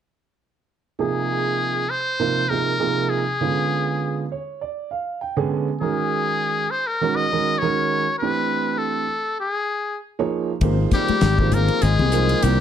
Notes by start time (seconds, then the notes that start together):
0.99 C3 F3 A#3 D#4 G#4
1.90 C5
2.20 C3 F3 A#3 D#4 A#4
2.49 C3 F3 A#3 D#4 G#4 A#4
2.79 C3 F3 A#3 D#4 G#4
3.09 G#4
3.41 D3 G#3 B3 C#4 F4
4.32 C#5
4.61 D5
4.91 F5
5.21 G5
5.37 D3 G#3 B3 C#4 G#4
5.51 G#5
5.81 D#3 G#3 C#4 F#4 G#4 A#4
6.71 C5
6.87 A#4
7.01 D#3 G#3 C#4 F#4 A#4
7.16 D#5
7.32 D#3 G#3 C#4 F#4 A#4
7.59 D#3 G#3 C#4 F#4 A#4 C#5
8.18 E3 A3 C4 D4 G4 B4
8.78 A4
9.40 G#4
10.19 F3 A#3 D#4 G#4 C#5
10.61 G#1 D#3 F3 A#3 C4 D#4 G4 G#4 C5, kick, hi-hat pedal, ride
10.79 muted clean electric guitar stroke
10.91 D#3 G3 A#3 C4 G4, kick, snare, hi-hat pedal, ride, high conga
11.08 muted fretless electric bass stroke, muted clean electric guitar stroke, ride, high conga
11.21 G#1, snare, hi-hat pedal, ride
11.39 F3 A#3 D#4 G#4 C5, muted clean electric guitar stroke, kick
11.52 D#3 A#3 C4 G4 A#4, hi-hat pedal, ride, high conga, low conga
11.56 A#3
11.68 A#3 C4 G4, ride
11.82 G#1 G#3 G#4, muted clean electric guitar stroke, hi-hat pedal, ride
11.99 C2 D#3 A#3 C4 G4, low conga
12.12 F3 A#3 D#4 A#4 C5, muted clean electric guitar stroke, hi-hat pedal, ride
12.29 ride
12.42 C2 D#3 G3 A#3 C4 G4, hi-hat pedal, ride